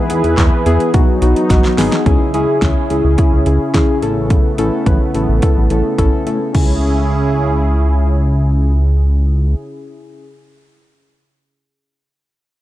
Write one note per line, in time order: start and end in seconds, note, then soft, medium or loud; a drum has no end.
0.00 0.93 E3 medium
0.00 0.93 E4 medium
0.00 0.93 G#4 medium
0.00 0.93 B4 medium
0.10 0.22 E2 loud
0.10 0.34 B3 medium
0.10 0.34 E4 medium
0.10 0.34 G#4 loud
0.10 closed hi-hat medium
0.24 0.36 E2 loud
0.24 closed hi-hat medium
0.38 0.50 E2 loud
0.38 0.62 B3 medium
0.38 0.62 E4 medium
0.38 0.62 G#4 loud
0.38 kick loud
0.38 snare loud
0.38 clap loud
0.38 closed hi-hat medium
0.66 0.78 E2 medium
0.66 0.90 B3 loud
0.66 0.90 E4 loud
0.66 0.90 G#4 loud
0.66 closed hi-hat medium
0.80 closed hi-hat medium
0.94 1.06 B1 loud
0.94 2.05 F#3 medium
0.94 2.05 B3 medium
0.94 1.18 B3 medium
0.94 2.05 D#4 medium
0.94 1.18 D#4 medium
0.94 1.18 F#4 loud
0.94 kick loud
0.94 closed hi-hat medium
1.22 1.34 B1 loud
1.22 1.46 B3 medium
1.22 1.46 D#4 medium
1.22 1.46 F#4 loud
1.22 closed hi-hat medium
1.36 closed hi-hat medium
1.50 1.62 A1 medium
1.50 1.74 B3 medium
1.50 1.74 D#4 medium
1.50 1.74 F#4 medium
1.50 kick loud
1.50 snare medium
1.50 closed hi-hat medium
1.64 snare medium
1.78 1.90 G#1 loud
1.78 2.02 B3 loud
1.78 2.02 D#4 loud
1.78 2.02 G#4 loud
1.78 snare loud
1.78 open hi-hat medium
1.92 snare loud
1.92 closed hi-hat medium
2.06 2.19 C#2 loud
2.06 6.51 C#3 medium
2.06 4.00 C#4 medium
2.06 2.30 C#4 loud
2.06 4.00 E4 medium
2.06 2.30 E4 loud
2.06 4.00 G#4 medium
2.06 2.30 G#4 loud
2.06 kick loud
2.06 closed hi-hat medium
2.34 2.47 C#2 medium
2.34 2.58 C#4 loud
2.34 2.58 E4 loud
2.34 2.58 G#4 loud
2.34 closed hi-hat medium
2.62 2.75 C#2 medium
2.62 2.86 C#4 medium
2.62 2.86 E4 medium
2.62 2.86 G#4 medium
2.62 kick loud
2.62 snare loud
2.62 closed hi-hat medium
2.90 3.03 C#2 medium
2.90 3.14 C#4 medium
2.90 3.14 E4 medium
2.90 3.14 G#4 medium
2.90 closed hi-hat medium
3.04 3.17 C#2 loud
3.18 3.42 C#4 medium
3.18 3.42 E4 medium
3.18 3.42 G#4 medium
3.18 kick loud
3.18 closed hi-hat medium
3.32 3.45 C#2 loud
3.46 3.59 C#2 loud
3.46 3.70 C#4 medium
3.46 3.70 E4 medium
3.46 3.70 G#4 medium
3.46 closed hi-hat medium
3.74 3.87 C#2 loud
3.74 3.98 C#4 loud
3.74 3.98 E4 medium
3.74 3.98 G#4 loud
3.74 kick medium
3.74 snare loud
3.74 closed hi-hat medium
4.02 4.40 A1 loud
4.02 6.52 A3 medium
4.02 6.52 B3 medium
4.02 4.50 C#4 medium
4.02 4.50 E4 medium
4.02 4.50 A4 loud
4.02 closed hi-hat medium
4.30 kick loud
4.30 closed hi-hat medium
4.58 4.71 A1 medium
4.58 4.82 C#4 loud
4.58 4.82 E4 medium
4.58 4.82 A4 loud
4.58 closed hi-hat medium
4.86 4.99 A1 loud
4.86 5.10 C#4 medium
4.86 5.10 E4 medium
4.86 5.10 B4 medium
4.86 kick loud
4.86 closed hi-hat medium
5.14 5.27 A1 loud
5.14 5.38 C#4 medium
5.14 5.38 E4 medium
5.14 5.38 A4 medium
5.14 closed hi-hat medium
5.28 5.41 A1 medium
5.42 5.67 C#4 medium
5.42 5.67 E4 medium
5.42 5.67 A4 medium
5.42 kick loud
5.42 closed hi-hat medium
5.56 5.69 A1 loud
5.70 5.83 A1 loud
5.70 5.95 C#4 medium
5.70 5.95 E4 medium
5.70 5.95 A4 medium
5.70 closed hi-hat medium
5.98 6.11 A1 loud
5.98 6.23 C#4 loud
5.98 6.23 E4 medium
5.98 6.23 A4 loud
5.98 kick medium
5.98 closed hi-hat medium
6.26 6.39 A2 loud
6.26 6.51 C#4 medium
6.26 6.51 E4 medium
6.26 6.51 A4 medium
6.26 closed hi-hat medium
6.53 9.55 C#2 medium
6.53 9.55 C#3 medium
6.53 10.24 C#4 medium
6.53 9.55 C#4 medium
6.53 10.25 E4 medium
6.53 9.55 E4 medium
6.53 9.55 G#4 medium
6.53 10.26 G#4 medium
6.53 kick loud
6.53 crash medium